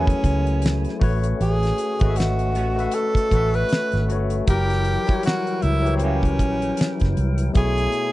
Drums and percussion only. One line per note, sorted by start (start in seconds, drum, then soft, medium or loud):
0.07 kick medium
0.07 closed hi-hat soft
0.24 kick medium
0.24 closed hi-hat medium
0.47 closed hi-hat soft
0.62 snare loud
0.62 closed hi-hat medium
0.85 snare soft
0.85 closed hi-hat soft
1.01 kick loud
1.01 open hi-hat soft
1.23 closed hi-hat medium
1.41 closed hi-hat medium
1.63 snare soft
1.63 closed hi-hat soft
1.78 closed hi-hat medium
1.99 kick loud
1.99 closed hi-hat soft
2.16 closed hi-hat medium
2.20 snare loud
2.39 closed hi-hat soft
2.55 closed hi-hat medium
2.79 closed hi-hat soft
2.91 closed hi-hat medium
3.15 kick medium
3.15 closed hi-hat soft
3.31 kick medium
3.31 closed hi-hat medium
3.54 closed hi-hat soft
3.69 snare loud
3.69 closed hi-hat medium
3.92 snare soft
3.92 closed hi-hat medium
4.10 closed hi-hat medium
4.30 closed hi-hat medium
4.47 kick loud
4.47 closed hi-hat medium
4.70 snare soft
4.70 closed hi-hat soft
4.85 closed hi-hat medium
5.07 kick loud
5.07 closed hi-hat soft
5.23 closed hi-hat loud
5.27 snare loud
5.47 closed hi-hat soft
5.62 closed hi-hat medium
5.86 closed hi-hat soft
5.99 closed hi-hat medium
6.23 kick medium
6.23 closed hi-hat soft
6.39 kick medium
6.39 closed hi-hat medium
6.62 closed hi-hat soft
6.77 snare loud
6.77 closed hi-hat medium
7.00 kick medium
7.00 snare soft
7.00 closed hi-hat medium
7.17 closed hi-hat medium
7.38 closed hi-hat medium
7.55 kick loud
7.55 closed hi-hat medium
7.77 closed hi-hat soft
7.92 closed hi-hat medium